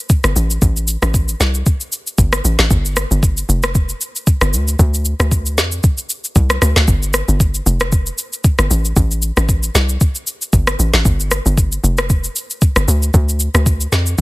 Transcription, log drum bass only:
0.24 0.34 G1 medium
0.36 0.58 A1 loud
0.62 0.97 A1 loud
1.02 1.35 A1 loud
1.40 1.63 C2 loud
2.18 2.41 G1 loud
2.45 2.57 A1 medium
2.59 2.69 A1 loud
2.71 3.05 G1 loud
3.11 3.43 G1 loud
3.49 3.94 F1 medium
4.41 4.55 G1 loud
4.53 4.76 D2 loud
4.79 5.14 D2 loud
5.20 5.59 D2 loud
5.58 5.80 F2 medium
6.36 6.58 C2 loud
6.62 6.74 D2 medium
6.76 6.86 D2 medium
6.88 7.23 G1 loud
7.28 7.61 G1 loud
7.66 8.11 F1 loud
8.59 8.69 G1 medium
8.71 8.93 A1 medium
8.96 9.31 A1 loud
9.37 9.69 A1 loud
9.75 9.97 C2 loud
10.53 10.75 G1 medium
10.79 10.92 A1 medium
10.94 11.04 A1 loud
11.05 11.40 G1 loud
11.46 11.78 G1 loud
11.84 12.28 F1 loud
12.76 12.86 G1 medium
12.88 13.10 D2 loud
13.14 13.49 D2 loud
13.54 13.87 D2 loud
13.92 14.15 F2 medium

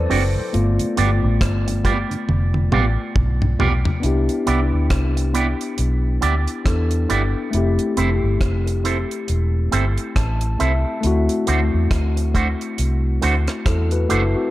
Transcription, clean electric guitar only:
0.09 0.22 C4 medium
0.09 0.22 F#4 medium
0.09 0.22 A4 medium
0.09 0.23 D5 medium
0.97 1.09 B3 medium
0.97 1.09 F4 medium
0.97 1.10 G4 medium
0.97 1.10 D5 medium
1.67 muted clean electric guitar stroke soft
1.84 1.96 B3 medium
1.84 1.97 F4 medium
1.84 1.97 G4 medium
1.84 1.97 D5 loud
2.72 2.84 B3 medium
2.72 2.84 F4 medium
2.72 2.85 G4 medium
2.72 2.85 D5 medium
3.59 3.71 B3 medium
3.59 3.72 F4 loud
3.59 3.72 G4 medium
3.59 3.72 D5 medium
4.46 4.59 B3 medium
4.46 4.59 E4 medium
4.46 4.59 G4 medium
4.46 4.59 D5 medium
5.16 muted clean electric guitar stroke soft
5.34 5.46 B3 medium
5.34 5.46 E4 medium
5.34 5.47 G4 medium
5.34 5.47 D5 medium
6.21 6.33 B3 medium
6.21 6.34 E4 medium
6.21 6.34 G4 medium
6.21 6.34 D5 loud
7.09 7.21 B3 medium
7.09 7.21 E4 medium
7.09 7.22 G4 medium
7.09 7.22 D5 medium
7.97 8.09 C4 medium
7.97 8.09 E4 medium
7.97 8.09 A4 medium
7.97 8.10 C5 medium
8.66 muted clean electric guitar stroke soft
8.84 8.96 C4 medium
8.84 8.97 E4 medium
8.84 8.97 A4 medium
8.84 8.97 C5 medium
9.71 9.84 C4 medium
9.71 9.84 E4 medium
9.71 9.84 A4 medium
9.71 9.85 C5 medium
10.59 10.71 C4 medium
10.59 10.72 E4 medium
10.59 10.72 A4 medium
10.59 10.72 C5 medium
11.47 11.59 A3 medium
11.47 11.59 D4 medium
11.47 11.60 F#4 medium
11.47 11.60 C5 medium
12.16 muted clean electric guitar stroke soft
12.34 12.46 A3 medium
12.34 12.47 D4 medium
12.34 12.47 F#4 loud
12.34 12.47 C5 medium
13.21 13.34 A3 medium
13.21 13.34 D4 medium
13.21 13.34 F#4 loud
13.21 13.35 C5 medium
14.09 14.21 A3 medium
14.09 14.22 D4 medium
14.09 14.22 F#4 medium
14.09 14.22 C5 loud

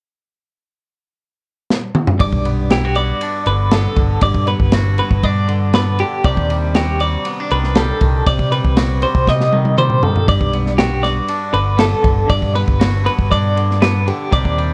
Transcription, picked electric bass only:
2.20 2.30 G1 medium
2.32 3.11 B1 medium
3.46 3.86 G1 medium
3.97 4.17 G1 medium
4.22 4.32 G1 medium
4.34 4.54 G2 medium
4.60 4.99 G1 medium
5.11 5.21 G1 medium
5.23 6.02 G2 medium
6.25 6.34 C2 medium
6.37 7.16 D#2 medium
7.51 7.90 C2 medium
8.01 8.21 C2 medium
8.27 8.36 C2 medium
8.39 8.59 C3 medium
8.64 9.04 C2 medium
9.15 9.24 C2 medium
9.27 10.06 C3 medium
10.28 10.38 G1 medium
10.40 11.19 B1 medium
11.54 11.93 G1 medium
12.04 12.24 G1 medium
12.29 12.40 G1 medium
12.42 12.62 G2 medium
12.68 13.07 G1 medium
13.19 13.28 G1 medium
13.31 14.10 G2 medium
14.33 14.42 C2 medium
14.45 14.73 D#2 medium

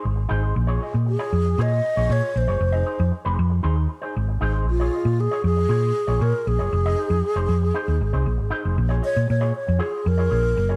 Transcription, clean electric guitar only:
0.04 muted clean electric guitar stroke soft
0.16 muted clean electric guitar stroke medium
0.29 0.44 D#4 medium
0.29 0.43 G#4 medium
0.29 0.42 C5 loud
0.43 0.55 D#4 medium
0.43 0.55 G#4 medium
0.43 0.56 C5 medium
0.55 muted clean electric guitar stroke soft
0.67 0.79 F4 medium
0.67 0.80 G#4 medium
0.67 0.82 C#5 medium
0.80 0.97 F4 medium
0.80 0.94 G#4 medium
0.80 0.93 D#5 medium
0.93 muted clean electric guitar stroke medium
1.06 muted clean electric guitar stroke soft
1.19 1.31 F4 medium
1.19 1.32 G#4 medium
1.19 1.32 C#5 medium
1.33 muted clean electric guitar stroke soft
1.46 muted clean electric guitar stroke soft
1.58 1.79 F4 medium
1.58 1.72 G#4 medium
1.58 1.71 C#5 loud
1.72 muted clean electric guitar stroke soft
1.84 muted clean electric guitar stroke soft
1.96 2.07 F4 soft
1.96 2.09 G#4 medium
1.96 2.10 C#5 medium
2.09 2.29 F4 medium
2.09 2.22 G#4 medium
2.09 2.21 C#5 medium
2.22 muted clean electric guitar stroke medium
2.34 muted clean electric guitar stroke soft
2.47 2.60 F4 medium
2.47 2.60 G#4 medium
2.47 2.61 C#5 medium
2.60 muted clean electric guitar stroke soft
2.72 2.84 D#4 medium
2.72 2.85 G#4 medium
2.72 2.86 D#5 medium
2.85 3.02 D#4 medium
2.85 2.99 G#4 medium
2.85 2.98 C5 medium
2.99 muted clean electric guitar stroke soft
3.12 muted clean electric guitar stroke soft
3.25 3.36 D#4 medium
3.25 3.37 G#4 medium
3.25 3.37 C5 medium
3.37 muted clean electric guitar stroke soft
3.50 muted clean electric guitar stroke medium
3.63 3.84 D#4 medium
3.63 3.76 G#4 medium
3.63 3.75 C5 medium
3.76 muted clean electric guitar stroke soft
3.88 muted clean electric guitar stroke soft
4.02 4.14 D#4 medium
4.02 4.15 G#4 medium
4.02 4.15 C5 medium
4.15 muted clean electric guitar stroke soft
4.29 muted clean electric guitar stroke medium
4.41 4.54 D#4 medium
4.41 4.53 G#4 medium
4.41 4.52 C5 loud
4.53 4.66 D#4 soft
4.53 4.66 G#4 medium
4.53 4.67 C5 medium
4.67 muted clean electric guitar stroke soft
4.80 4.91 F4 medium
4.80 4.93 G#4 medium
4.80 4.94 C#5 medium
4.93 5.09 F4 medium
4.93 5.05 G#4 medium
4.93 5.05 D#5 medium
5.06 muted clean electric guitar stroke medium
5.20 muted clean electric guitar stroke soft
5.31 5.43 F4 medium
5.31 5.43 G#4 medium
5.31 5.44 C#5 medium
5.44 muted clean electric guitar stroke soft
5.57 muted clean electric guitar stroke medium
5.69 5.90 F4 medium
5.69 5.82 G#4 medium
5.69 5.81 C#5 medium
5.82 muted clean electric guitar stroke soft
5.95 muted clean electric guitar stroke soft
6.07 6.18 F4 medium
6.07 6.20 G#4 medium
6.07 6.20 C#5 medium
6.19 6.41 F4 medium
6.19 6.33 G#4 medium
6.19 6.32 C#5 medium
6.33 muted clean electric guitar stroke soft
6.46 muted clean electric guitar stroke soft
6.59 6.72 F4 soft
6.59 6.71 G#4 medium
6.59 6.73 C#5 medium
6.72 muted clean electric guitar stroke soft
6.86 6.97 D#4 medium
6.86 6.97 G#4 medium
6.86 6.99 D#5 medium
6.98 7.14 D#4 medium
6.98 7.10 G#4 medium
6.98 7.09 C5 medium
7.10 muted clean electric guitar stroke soft
7.24 muted clean electric guitar stroke soft
7.36 7.47 D#4 medium
7.36 7.48 G#4 medium
7.36 7.49 C5 medium
7.48 muted clean electric guitar stroke soft
7.62 muted clean electric guitar stroke soft
7.74 7.95 D#4 medium
7.74 7.88 G#4 medium
7.74 7.87 C5 loud
7.88 muted clean electric guitar stroke soft
8.01 muted clean electric guitar stroke soft
8.13 8.25 D#4 soft
8.13 8.25 G#4 medium
8.13 8.26 C5 medium
8.26 muted clean electric guitar stroke soft
8.38 muted clean electric guitar stroke medium
8.50 8.64 D#4 medium
8.50 8.63 G#4 medium
8.50 8.62 C5 medium
8.63 8.76 D#4 soft
8.63 8.76 G#4 medium
8.63 8.78 C5 medium
8.77 muted clean electric guitar stroke soft
8.89 9.01 F4 medium
8.89 9.01 G#4 medium
8.89 9.03 C#5 medium
9.02 9.19 F4 medium
9.02 9.16 G#4 medium
9.02 9.15 D#5 medium
9.15 muted clean electric guitar stroke soft
9.27 muted clean electric guitar stroke soft
9.41 9.52 F4 medium
9.41 9.54 G#4 medium
9.41 9.54 C#5 medium
9.54 muted clean electric guitar stroke soft
9.67 muted clean electric guitar stroke medium
9.79 10.00 F4 medium
9.79 9.92 G#4 medium
9.79 9.91 C#5 medium
9.92 muted clean electric guitar stroke medium
10.05 muted clean electric guitar stroke medium
10.18 10.28 F4 medium
10.18 10.29 G#4 medium
10.18 10.31 C#5 medium
10.29 10.51 F4 medium
10.29 10.43 G#4 medium
10.29 10.41 C#5 medium
10.43 muted clean electric guitar stroke medium
10.56 muted clean electric guitar stroke soft
10.69 10.76 F4 soft
10.69 10.76 G#4 medium
10.69 10.76 C#5 medium

